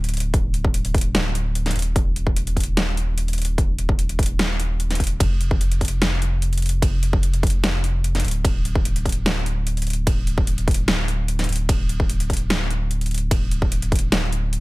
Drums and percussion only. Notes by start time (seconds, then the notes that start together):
0.04 closed hi-hat
0.09 closed hi-hat
0.14 closed hi-hat
0.17 closed hi-hat
0.20 closed hi-hat
0.34 kick, closed hi-hat
0.54 closed hi-hat
0.65 kick
0.74 closed hi-hat
0.85 closed hi-hat
0.94 kick, closed hi-hat
0.98 closed hi-hat
1.01 closed hi-hat
1.15 snare, closed hi-hat
1.35 closed hi-hat
1.55 closed hi-hat
1.66 snare, closed hi-hat
1.71 closed hi-hat
1.76 closed hi-hat
1.79 closed hi-hat
1.82 closed hi-hat
1.96 kick, closed hi-hat
2.16 closed hi-hat
2.27 kick
2.36 closed hi-hat
2.47 closed hi-hat
2.57 kick, closed hi-hat
2.60 closed hi-hat
2.64 closed hi-hat
2.77 snare, closed hi-hat
2.97 closed hi-hat
3.18 closed hi-hat
3.28 closed hi-hat
3.33 closed hi-hat
3.38 closed hi-hat
3.42 closed hi-hat
3.45 closed hi-hat
3.58 kick, closed hi-hat
3.79 closed hi-hat
3.89 kick
3.99 closed hi-hat
4.09 closed hi-hat
4.19 kick, closed hi-hat
4.23 closed hi-hat
4.26 closed hi-hat
4.39 snare, closed hi-hat
4.60 closed hi-hat
4.80 closed hi-hat
4.91 snare, closed hi-hat
4.95 closed hi-hat
5.00 kick, closed hi-hat
5.04 closed hi-hat
5.07 closed hi-hat
5.20 kick, closed hi-hat, ride
5.41 closed hi-hat
5.51 kick
5.61 closed hi-hat
5.72 closed hi-hat
5.81 kick, closed hi-hat
5.85 closed hi-hat
5.88 closed hi-hat
6.02 snare, closed hi-hat
6.22 closed hi-hat
6.42 closed hi-hat
6.53 closed hi-hat
6.58 closed hi-hat
6.62 closed hi-hat
6.66 closed hi-hat
6.69 closed hi-hat
6.82 kick, closed hi-hat, ride
7.03 closed hi-hat
7.13 kick
7.23 closed hi-hat
7.34 closed hi-hat
7.43 kick, closed hi-hat
7.47 closed hi-hat
7.50 closed hi-hat
7.64 snare, closed hi-hat
7.84 closed hi-hat
8.04 closed hi-hat
8.15 snare, closed hi-hat
8.20 closed hi-hat
8.25 closed hi-hat
8.28 closed hi-hat
8.31 closed hi-hat
8.45 kick, closed hi-hat, ride
8.65 closed hi-hat
8.75 kick
8.85 closed hi-hat
8.96 closed hi-hat
9.05 kick, closed hi-hat
9.09 closed hi-hat
9.12 closed hi-hat
9.26 snare, closed hi-hat
9.46 closed hi-hat
9.67 closed hi-hat
9.77 closed hi-hat
9.82 closed hi-hat
9.87 closed hi-hat
9.90 closed hi-hat
9.93 closed hi-hat
10.07 kick, closed hi-hat, ride
10.27 closed hi-hat
10.38 kick
10.47 closed hi-hat
10.58 closed hi-hat
10.68 kick, closed hi-hat
10.71 closed hi-hat
10.74 closed hi-hat
10.88 snare, closed hi-hat
11.08 closed hi-hat
11.28 closed hi-hat
11.39 snare, closed hi-hat
11.44 closed hi-hat
11.49 closed hi-hat
11.53 closed hi-hat
11.56 closed hi-hat
11.69 kick, closed hi-hat, ride
11.89 closed hi-hat
12.00 kick
12.10 closed hi-hat
12.20 closed hi-hat
12.30 kick, closed hi-hat
12.33 closed hi-hat
12.37 closed hi-hat
12.50 snare, closed hi-hat
12.71 closed hi-hat
12.91 closed hi-hat
13.01 closed hi-hat
13.06 closed hi-hat
13.11 closed hi-hat
13.14 closed hi-hat
13.18 closed hi-hat
13.31 kick, closed hi-hat, ride
13.51 closed hi-hat
13.62 kick
13.72 closed hi-hat
13.82 closed hi-hat
13.92 kick, closed hi-hat
13.96 closed hi-hat
13.99 closed hi-hat
14.12 snare, closed hi-hat
14.32 closed hi-hat
14.53 closed hi-hat